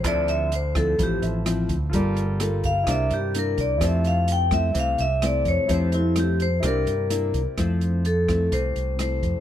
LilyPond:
<<
  \new Staff \with { instrumentName = "Vibraphone" } { \time 4/4 \key f \major \tempo 4 = 128 d''8 e''8 c''8 a'8 g'8 r4. | r4. f''8 e''8 g'8 bes'8 d''8 | e''8 f''8 g''8 e''8 f''8 e''8 d''8 des''8 | c''8 e'8 g'8 c''8 bes'4.~ bes'16 r16 |
r4 a'4 c''4 c''4 | }
  \new Staff \with { instrumentName = "Grand piano" } { \time 4/4 \key f \major <a' c'' e''>2~ <a' c'' e''>8 <f' a' c'' e''>4. | <f' a' bes' d''>2 <e' g' bes' d''>2 | <e' g' a' c''>1 | <e' g' a' c''>8 <e' g' a' c''>4. <e' g' bes' d''>2 |
r1 | }
  \new Staff \with { instrumentName = "Nylon-string guitar" } { \time 4/4 \key f \major << { <f c' e'>4 r8 <f c' e'>8 <f c' e'>4 <f c' e'>8 r8 | <bes f' a'>8 r8 <bes f' a'>8 r8 <bes d' e'>8 r8 <bes d' e'>4 | <a c' e'>4. <a c' e'>8 <a c' e'>8 r8 <a c' e'>4 | <a c' e'>8 r8 <a c' e'>8 r8 <bes d' e'>8 r8 <bes d' e'>8 r8 |
<a c' e'>4 r8 <a c' e'>4. <a c' e'>4 | } \\ { d2 a,2 | g2 c2 | f2 c2 | f2 c2 |
f2 c2 | } >> }
  \new Staff \with { instrumentName = "Fingered electric bass" } { \clef bass \time 4/4 \key f \major d,2 a,,8 a,,4 d,8 | g,,2 c,8 g,4 c,8 | f,2 c,8 c,4 f,16 r16 | f,2 c,8 g,4 c,16 r16 |
f,2 c,8 c,4 f,16 r16 | }
  \new DrumStaff \with { instrumentName = "Drums" } \drummode { \time 4/4 <hh bd ss>8 hh8 hh8 <hh bd ss>8 <hh bd>8 hh8 <hh ss>8 <hh bd>8 | <hh bd>8 hh8 <hh ss>8 <hh bd>8 <hh bd ss>8 hh8 hh8 <hh bd>8 | <hh bd ss>8 hh8 hh8 <hh bd ss>8 <hh bd>8 hh8 <hh ss>8 <hh bd>8 | <hh bd>8 hh8 <hh ss>8 hh8 <hh bd ss>8 hh8 hh8 <hh bd>8 |
<hh bd ss>8 hh8 hh8 <hh bd ss>8 <hh bd>8 hh8 <hh ss>8 <hh bd>8 | }
>>